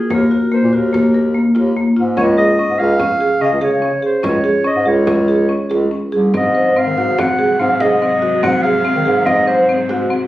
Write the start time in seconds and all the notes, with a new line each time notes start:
Already playing: G#4
0.10 D#2 A#3 A#4, frame drum
0.31 F#4
0.52 A#3 C5
0.63 A#2
0.73 D#2 F#4 A#4, frame drum
0.93 A#3, frame drum
1.14 A#4
1.35 A#3, frame drum
1.55 D#2 F4, frame drum
1.77 A#3
1.97 G#2 F4
2.17 C#2 C#4 C#5, frame drum
2.38 G#4 D#5
2.59 C#4
2.69 G#2
2.79 C#2 G#4 F5, frame drum
2.99 C#4, frame drum
3.20 G#4, frame drum
3.41 C#3 C#4 D#5, frame drum
3.52 C#2
3.61 C#3 G#4 C#5, frame drum
3.72 C#3
3.82 C#4
4.03 G#4 C5
4.23 C#2 C#4 C#5, frame drum
4.44 G#4
4.65 C#4 D#5, frame drum
4.76 G#2
4.86 C#2 G#4 C#5
5.07 C#4, frame drum
5.28 G#4
5.49 C#4
5.70 C#2 G#4, frame drum
5.91 C#4
6.12 C2 G#4
6.33 G#2 C3 F#3 G#3 C4 D#5, frame drum
6.55 C5
6.76 C4 F5
6.87 D#3
6.97 G#2 F#4, frame drum
7.18 C4 F#5, frame drum
7.39 G#4, frame drum
7.60 G#2 C4 F5, frame drum
7.71 G#2
7.80 G#2 G#4 D#5, frame drum
7.92 G#2
8.02 C4
8.22 F#4
8.43 G#2 C4 F#5, frame drum
8.63 G#4 F5
8.85 C4
8.96 D#3
9.05 G#2 G#4, frame drum
9.26 C4 D#5, frame drum
9.47 C5, frame drum
9.69 C4, frame drum
9.89 G#2 F#4, frame drum
10.10 C4